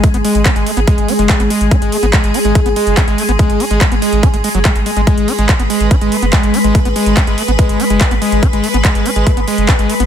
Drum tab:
HH |xxoxxxoxxxoxxxox|xxoxxxoxxxoxxxox|xxoxxxoxxxoxxxox|xxoxxxoxxxoxxxox|
CP |----x-------x---|----x-------x---|----x-------x---|----x-------x---|
BD |o---o---o---o---|o---o---o---o---|o---o---o---o---|o---o---o---o---|

HH |xxoxxxoxxxoxxxox|xxoxxxoxxxoxxxox|
CP |----x-------x---|----x-------x---|
BD |o---o---o---o---|o---o---o---o---|